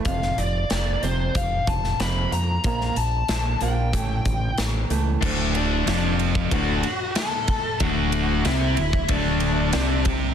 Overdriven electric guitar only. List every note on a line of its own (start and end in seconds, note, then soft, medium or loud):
5.21 5.85 D2 loud
5.21 5.85 D3 loud
5.86 6.50 F2 loud
5.86 6.50 F3 loud
6.51 6.83 D2 medium
6.51 6.83 D3 loud
7.81 8.44 D2 medium
7.81 8.44 D3 loud
8.45 8.76 C3 loud
8.45 8.77 C4 medium
8.77 9.03 D2 medium
9.08 9.72 D2 medium
9.08 9.73 D3 loud
9.73 10.34 C3 loud
9.73 10.34 C4 medium